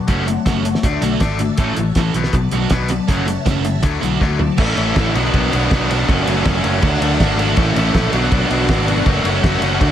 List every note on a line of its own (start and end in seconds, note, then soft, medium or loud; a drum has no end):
0.00 3.05 F#4 medium
0.07 0.36 F#1 medium
0.07 0.26 F#3 medium
0.07 0.26 A3 loud
0.07 0.26 C#4 loud
0.07 0.26 F#4 medium
0.07 0.83 C#5 medium
0.07 0.81 E5 medium
0.07 2.13 A5 medium
0.07 kick loud
0.07 closed hi-hat medium
0.27 0.44 F#3 medium
0.27 0.44 A3 medium
0.27 muted distorted electric guitar stroke medium
0.27 closed hi-hat medium
0.45 0.73 F#1 medium
0.45 0.63 F#3 medium
0.45 0.63 A3 medium
0.45 0.64 C#4 medium
0.45 0.64 F#4 medium
0.45 kick loud
0.45 snare loud
0.45 closed hi-hat medium
0.65 0.82 F#3 medium
0.65 0.82 A3 medium
0.65 muted distorted electric guitar stroke soft
0.65 closed hi-hat medium
0.75 snare medium
0.82 0.97 D2 medium
0.82 1.01 D3 medium
0.82 1.01 A3 medium
0.82 1.02 D4 medium
0.82 1.58 D5 medium
0.82 2.13 E5 medium
0.82 muted distorted electric guitar stroke soft
0.82 kick loud
0.82 closed hi-hat medium
1.01 1.16 B1 medium
1.01 1.19 D3 medium
1.01 1.19 A3 medium
1.01 1.20 D4 medium
1.01 1.20 F#4 medium
1.01 closed hi-hat medium
1.20 1.49 G#1 medium
1.20 1.39 D3 medium
1.20 1.39 A3 medium
1.20 1.39 D4 medium
1.20 muted distorted electric guitar stroke medium
1.20 kick loud
1.20 snare loud
1.20 closed hi-hat medium
1.39 1.57 D3 medium
1.39 1.57 A3 medium
1.39 muted distorted electric guitar stroke medium
1.39 closed hi-hat medium
1.58 1.72 A1 medium
1.58 1.76 A2 medium
1.58 1.77 E3 medium
1.58 1.77 A3 loud
1.58 1.76 C#4 medium
1.58 1.76 A4 medium
1.58 2.15 C#5 medium
1.58 kick loud
1.58 closed hi-hat medium
1.76 1.91 A1 medium
1.76 1.95 A2 medium
1.76 1.95 E3 medium
1.76 muted distorted electric guitar stroke soft
1.76 closed hi-hat medium
1.95 2.10 A1 medium
1.95 2.14 A2 medium
1.95 2.14 E3 medium
1.95 2.15 A3 medium
1.95 2.15 C#4 medium
1.95 2.15 A4 medium
1.95 kick loud
1.95 snare loud
1.95 closed hi-hat medium
2.14 2.28 B1 medium
2.14 2.33 B2 medium
2.14 2.33 F#3 medium
2.14 2.34 B3 medium
2.14 3.08 B4 medium
2.14 3.09 D5 medium
2.14 4.56 A5 medium
2.14 muted distorted electric guitar stroke soft
2.14 closed hi-hat medium
2.24 snare medium
2.33 2.47 B1 medium
2.33 2.51 B2 medium
2.33 2.51 F#3 medium
2.33 muted distorted electric guitar stroke soft
2.33 kick loud
2.33 closed hi-hat medium
2.51 2.66 B1 medium
2.51 2.70 B2 medium
2.51 2.70 F#3 medium
2.51 2.71 B3 medium
2.51 2.71 D4 medium
2.51 2.71 F#4 medium
2.51 closed hi-hat medium
2.70 2.99 B1 medium
2.70 2.89 B2 medium
2.70 2.89 F#3 medium
2.70 2.89 B3 medium
2.70 muted distorted electric guitar stroke medium
2.70 kick loud
2.70 snare loud
2.70 closed hi-hat medium
2.88 3.07 B2 medium
2.88 3.07 F#3 medium
2.88 muted distorted electric guitar stroke soft
2.88 closed hi-hat medium
3.08 3.36 F#1 medium
3.08 3.26 F#2 loud
3.08 3.27 C#3 loud
3.08 3.27 F#3 loud
3.08 3.27 A3 medium
3.08 3.26 C#4 medium
3.08 4.56 F#4 medium
3.08 3.25 F#4 medium
3.08 3.83 C#5 medium
3.08 4.56 E5 medium
3.08 kick loud
3.08 closed hi-hat medium
3.26 3.44 F#2 medium
3.26 3.45 C#3 medium
3.26 muted distorted electric guitar stroke medium
3.26 closed hi-hat medium
3.45 3.83 F#1 medium
3.45 3.63 F#2 medium
3.45 3.63 C#3 medium
3.45 3.65 A3 medium
3.45 3.64 C#4 medium
3.45 3.63 F#4 medium
3.45 kick loud
3.45 snare loud
3.45 closed hi-hat medium
3.65 3.82 F#2 medium
3.65 3.82 C#3 medium
3.65 muted distorted electric guitar stroke soft
3.65 closed hi-hat medium
3.82 3.97 D2 medium
3.82 4.00 D3 medium
3.82 4.01 F#3 medium
3.82 4.02 A3 medium
3.82 4.58 D5 medium
3.82 muted distorted electric guitar stroke soft
3.82 kick loud
3.82 closed hi-hat loud
4.01 4.16 B1 medium
4.01 4.19 D3 medium
4.01 4.19 F#3 medium
4.01 4.19 A3 medium
4.01 4.20 D4 medium
4.01 4.20 F#4 medium
4.01 closed hi-hat medium
4.20 4.49 D2 medium
4.20 4.39 D3 medium
4.20 4.39 F#3 medium
4.20 4.39 A3 medium
4.20 muted distorted electric guitar stroke soft
4.20 kick loud
4.20 snare medium
4.39 4.57 D3 medium
4.39 4.57 F#3 medium
4.39 muted distorted electric guitar stroke soft
4.39 floor tom medium
4.57 4.75 A1 loud
4.57 4.75 A2 loud
4.57 4.75 E3 loud
4.57 4.77 A3 loud
4.57 4.77 C#4 loud
4.57 4.77 E4 loud
4.57 6.06 F#4 medium
4.57 5.14 C#5 medium
4.57 5.14 E5 medium
4.57 8.09 A5 medium
4.57 kick loud
4.57 crash loud
4.76 4.94 A1 medium
4.76 4.94 A2 medium
4.76 4.95 E3 medium
4.76 4.96 A3 medium
4.76 4.95 C#4 medium
4.76 4.96 E4 medium
4.76 ride medium
4.95 5.13 A1 medium
4.95 5.13 A2 medium
4.95 5.14 E3 medium
4.95 5.14 A3 medium
4.95 5.14 C#4 medium
4.95 5.14 E4 medium
4.95 kick loud
4.95 snare loud
4.95 ride loud
5.14 5.31 B1 medium
5.14 5.32 B2 medium
5.14 5.33 F#3 loud
5.14 5.33 B3 loud
5.14 5.33 D4 loud
5.14 5.34 F#4 loud
5.14 6.07 B4 medium
5.14 6.07 D5 medium
5.14 ride medium
5.25 snare soft
5.33 5.50 B1 loud
5.33 5.50 B2 loud
5.33 5.52 F#3 loud
5.33 5.52 B3 loud
5.33 5.52 D4 loud
5.33 5.52 F#4 loud
5.33 kick loud
5.33 ride loud
5.51 5.69 B1 medium
5.51 5.69 B2 medium
5.51 5.70 F#3 medium
5.51 5.70 B3 loud
5.51 5.70 D4 medium
5.51 5.71 F#4 loud
5.51 ride medium
5.70 6.04 B1 loud
5.70 5.88 B2 medium
5.70 5.89 F#3 medium
5.70 5.88 B3 medium
5.70 5.89 D4 medium
5.70 5.90 F#4 loud
5.70 kick loud
5.70 snare loud
5.70 ride loud
5.89 6.07 B2 medium
5.89 6.07 F#3 medium
5.89 6.07 B3 medium
5.89 6.08 D4 loud
5.89 6.09 F#4 loud
5.89 ride medium
6.07 6.25 F#1 loud
6.07 6.25 F#2 loud
6.07 6.25 C#3 loud
6.07 6.27 F#3 loud
6.07 6.27 A3 loud
6.07 6.27 C#4 loud
6.07 6.28 F#4 medium
6.07 9.92 F#4 medium
6.07 6.83 C#5 medium
6.07 kick loud
6.07 ride loud
6.11 8.13 E5 medium
6.26 6.43 F#1 medium
6.26 6.44 F#2 medium
6.26 6.44 C#3 medium
6.26 6.46 F#3 medium
6.26 6.46 A3 medium
6.26 6.46 C#4 medium
6.26 6.45 F#4 medium
6.26 ride medium
6.45 6.62 F#1 medium
6.45 6.62 F#2 medium
6.45 6.62 C#3 medium
6.45 6.64 F#3 medium
6.45 6.65 A3 medium
6.45 6.64 C#4 medium
6.45 6.64 F#4 loud
6.45 kick loud
6.45 snare loud
6.45 ride loud
6.63 6.81 F#1 medium
6.63 6.81 F#2 medium
6.63 6.81 C#3 medium
6.63 6.82 F#3 medium
6.63 6.83 A3 loud
6.63 6.82 C#4 loud
6.63 6.83 F#4 medium
6.63 ride medium
6.82 6.99 D2 loud
6.82 7.00 D3 medium
6.82 7.01 F#3 loud
6.82 7.02 A3 loud
6.82 7.02 D4 loud
6.82 7.02 F#4 loud
6.82 7.57 D5 medium
6.82 kick loud
6.82 ride loud
7.01 7.17 D2 medium
7.01 7.19 D3 medium
7.01 7.20 F#3 loud
7.01 7.21 A3 medium
7.01 7.21 D4 loud
7.01 7.21 F#4 loud
7.01 ride medium
7.20 7.53 G#1 medium
7.20 7.37 D3 medium
7.20 7.38 F#3 medium
7.20 7.39 A3 medium
7.20 7.38 D4 medium
7.20 7.40 F#4 loud
7.20 kick loud
7.20 snare loud
7.20 ride loud
7.38 7.56 D3 medium
7.38 7.58 F#3 medium
7.38 7.58 A3 loud
7.38 7.57 D4 loud
7.38 7.59 F#4 loud
7.38 ride medium
7.57 7.74 A1 loud
7.57 7.74 A2 loud
7.57 7.75 E3 loud
7.57 7.76 A3 loud
7.57 7.75 C#4 loud
7.57 7.76 E4 loud
7.57 7.78 A4 loud
7.57 8.14 C#5 medium
7.57 kick loud
7.57 ride loud
7.75 7.92 A1 medium
7.75 7.92 A2 medium
7.75 7.93 E3 medium
7.75 7.94 A3 medium
7.75 7.94 C#4 medium
7.75 7.94 E4 loud
7.75 7.96 A4 loud
7.75 ride medium
7.93 8.11 A#1 medium
7.93 8.12 A2 medium
7.93 8.12 E3 medium
7.93 8.13 A3 medium
7.93 8.12 C#4 loud
7.93 8.13 E4 medium
7.93 8.14 A4 loud
7.93 kick loud
7.93 snare loud
7.93 ride loud
8.12 8.29 B1 loud
8.12 8.30 B2 loud
8.12 8.31 F#3 loud
8.12 8.31 B3 loud
8.12 8.31 D4 loud
8.12 8.32 F#4 loud
8.12 9.06 B4 medium
8.12 9.06 D5 medium
8.12 9.80 A5 medium
8.12 ride medium
8.24 snare soft
8.31 8.48 B1 loud
8.31 8.48 B2 loud
8.31 8.49 F#3 medium
8.31 8.49 B3 loud
8.31 8.50 D4 loud
8.31 8.51 F#4 loud
8.31 kick loud
8.31 ride loud
8.49 8.66 B1 medium
8.49 8.67 B2 medium
8.49 8.68 F#3 medium
8.49 8.68 B3 medium
8.49 8.68 D4 medium
8.49 8.70 F#4 loud
8.49 ride medium
8.68 9.02 G#1 medium
8.68 8.86 B2 medium
8.68 8.87 F#3 medium
8.68 8.87 B3 medium
8.68 8.87 D4 loud
8.68 8.88 F#4 medium
8.68 kick loud
8.68 snare loud
8.68 ride loud
8.87 9.05 B2 medium
8.87 9.06 F#3 medium
8.87 9.05 B3 medium
8.87 9.06 D4 loud
8.87 9.07 F#4 loud
8.87 ride medium
9.06 9.23 F#1 medium
9.06 9.25 F#3 loud
9.06 9.25 A3 loud
9.06 9.25 C#4 loud
9.06 9.26 F#4 loud
9.06 9.81 C#5 medium
9.06 9.92 E5 medium
9.06 kick loud
9.06 ride loud
9.24 9.41 F#1 medium
9.24 9.43 F#3 medium
9.24 9.44 A3 medium
9.24 9.44 C#4 medium
9.24 9.45 F#4 loud
9.24 ride medium
9.44 9.60 F#1 loud
9.44 9.62 F#3 medium
9.44 9.62 A3 medium
9.44 9.62 C#4 medium
9.44 9.63 F#4 loud
9.44 kick loud
9.44 snare loud
9.44 ride loud
9.61 9.78 F#1 medium
9.61 9.80 F#3 medium
9.61 9.81 A3 medium
9.61 9.80 C#4 medium
9.61 9.82 F#4 loud
9.61 ride medium
9.80 9.92 D2 loud
9.80 9.92 D3 medium
9.80 9.92 A3 loud
9.80 9.92 D4 loud
9.80 9.92 F#4 loud
9.80 9.92 D5 medium
9.80 9.92 A5 medium
9.80 kick loud
9.80 ride loud